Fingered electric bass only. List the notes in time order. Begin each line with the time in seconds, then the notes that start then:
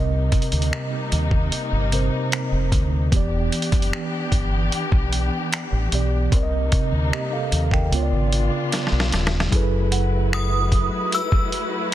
Already playing: C2
0.52 D2
1.12 D#2
1.52 muted fingered electric bass stroke
1.72 G1
2.52 F1
2.72 D2
3.12 E1
3.72 F#1
4.32 G1
4.72 muted fingered electric bass stroke
4.92 B1
5.72 A1
5.92 B1
6.32 C2
6.92 D2
7.52 D#2
7.92 C#2
8.12 G#1
8.92 B1
9.12 D#1
9.52 F#1